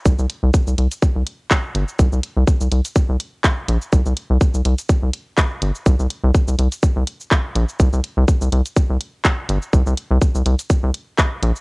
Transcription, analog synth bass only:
0.06 0.15 C2 loud
0.19 0.26 C2 loud
0.43 0.51 C2 loud
0.67 0.75 C2 medium
0.78 0.87 C2 medium
1.16 1.23 C2 medium
1.75 1.84 G1 loud
1.99 2.08 C2 loud
2.12 2.20 C2 loud
2.37 2.44 C2 loud
2.61 2.68 C2 medium
2.72 2.81 C2 medium
3.09 3.17 C2 loud
3.68 3.78 A#1 loud
3.93 4.02 C2 loud
4.06 4.13 C2 loud
4.30 4.38 C2 loud
4.54 4.62 C2 medium
4.65 4.74 C2 medium
5.03 5.10 C2 medium
5.62 5.71 G1 loud
5.86 5.95 C2 loud
5.99 6.07 C2 loud
6.24 6.31 C2 loud
6.48 6.55 C2 medium
6.59 6.68 C2 medium
6.96 7.04 C2 loud
7.55 7.65 A#1 loud
7.80 7.89 C2 loud
7.93 8.01 C2 loud
8.17 8.25 C2 loud
8.41 8.49 C2 medium
8.52 8.61 C2 loud
8.90 8.97 C2 medium
9.49 9.58 G1 loud
9.73 9.82 C2 loud
9.87 9.94 C2 loud
10.11 10.18 C2 loud
10.35 10.42 C2 medium
10.46 10.55 C2 medium
10.83 10.91 C2 loud
11.43 11.52 A#1 loud

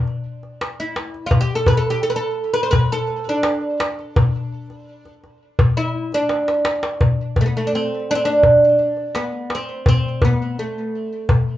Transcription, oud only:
0.80 1.25 E4 medium
1.26 1.40 F4 medium
1.41 1.54 G4 medium
1.55 1.67 A4 medium
1.68 1.77 B4 medium
1.77 1.89 A4 medium
1.90 2.03 G4 medium
2.03 2.09 A4 medium
2.10 2.16 B4 medium
2.16 2.53 A4 medium
2.54 2.62 B4 medium
2.63 2.70 C5 medium
2.71 2.92 B4 medium
2.92 3.29 A4 medium
3.29 5.14 D4 medium
5.77 6.14 E4 medium
6.14 6.84 D4 medium
7.41 7.45 A3 medium
7.46 7.52 B3 medium
7.57 7.76 A3 medium
7.67 7.73 D4 medium
7.75 8.07 C4 medium
8.11 8.15 D4 medium
8.15 8.22 C4 medium
8.25 9.19 D4 medium
9.15 9.52 B3 medium
9.55 9.87 C4 medium
9.89 10.24 C4 loud
10.25 10.59 B3 medium
10.59 11.58 A3 medium

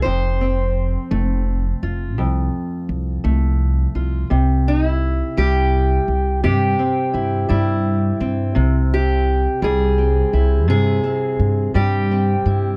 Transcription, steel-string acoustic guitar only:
0.02 2.17 F2 medium
0.02 4.29 C5 medium
0.41 4.27 C4 soft
1.11 3.23 A3 medium
1.83 3.94 F4 soft
2.18 4.31 F2 medium
3.24 4.26 A3 medium
3.95 4.27 F4 soft
4.30 6.43 C3 medium
4.68 4.88 D#4 medium
4.88 6.09 E4 medium
5.37 7.48 G3 medium
5.37 6.42 G4 loud
6.43 8.52 C3 medium
6.43 8.21 G4 medium
6.79 8.20 C4 soft
7.13 7.48 E4 soft
7.49 8.51 G3 medium
7.49 9.27 E4 medium
8.20 9.98 C4 soft
8.55 10.67 C3 medium
8.94 9.63 G4 medium
9.62 11.73 G3 medium
9.62 10.69 G#4 loud
9.98 11.03 C4 soft
10.34 12.45 E4 soft
10.68 12.76 C3 medium
10.68 11.75 G#4 loud
11.04 12.11 C4 soft
11.74 12.76 G3 medium
11.74 12.77 G4 medium
12.11 12.77 C4 soft
12.46 12.77 E4 soft

